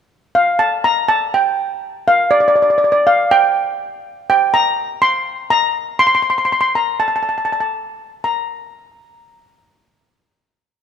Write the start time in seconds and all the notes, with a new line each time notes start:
0.35 F5
0.59 A5
0.84 A#5
1.09 A5
1.34 G5
2.08 F5
2.31 D5
2.40 D5
2.48 D5
2.56 D5
2.62 D5
2.70 D5
2.78 D5
2.84 D5
2.92 D5
3.07 F5
3.31 G5
4.30 G5
4.54 A#5
5.02 C6
5.50 A#5
5.99 C6
6.07 C6
6.15 C6
6.23 C6
6.30 C6
6.38 C6
6.45 C6
6.52 C6
6.61 C6
6.75 A#5
7.00 A5
7.08 A5
7.16 A5
7.23 A5
7.29 A5
7.38 A5
7.45 A5
7.53 A5
7.61 A5
8.24 A#5